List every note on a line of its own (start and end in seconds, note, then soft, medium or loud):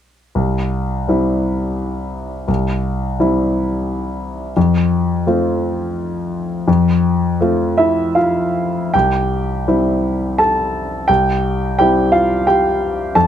0.35 1.06 C2 soft
1.08 2.45 G3 soft
1.08 2.45 C4 soft
1.08 2.45 E4 soft
2.48 3.17 C2 soft
3.19 4.52 G3 soft
3.19 4.53 C4 soft
3.19 4.53 E4 soft
4.57 5.24 F2 soft
5.27 6.63 A3 soft
5.27 6.64 C4 soft
5.27 6.64 F4 soft
6.68 7.38 F2 soft
7.41 8.90 A3 soft
7.41 8.90 C4 soft
7.41 8.15 F4 soft
7.78 8.14 E4 soft
7.78 8.16 E5 soft
8.15 8.90 F4 soft
8.15 8.93 F5 soft
8.94 9.65 C2 soft
8.94 10.35 G4 soft
8.94 10.38 G5 medium
9.67 11.05 G3 soft
9.67 11.05 C4 soft
9.67 11.05 E4 soft
10.38 11.05 A4 soft
10.38 11.09 A5 medium
11.08 11.76 C2 soft
11.08 11.74 G4 soft
11.08 11.77 G5 medium
11.79 13.12 G3 soft
11.79 13.12 C4 soft
11.79 13.12 E4 soft
11.79 12.11 G4 soft
11.79 12.13 G5 medium
12.12 12.45 F4 soft
12.12 12.46 F5 medium
12.47 13.11 G4 soft
12.47 13.15 G5 medium
13.15 13.27 F2 soft
13.15 13.27 A4 soft
13.15 13.27 A5 medium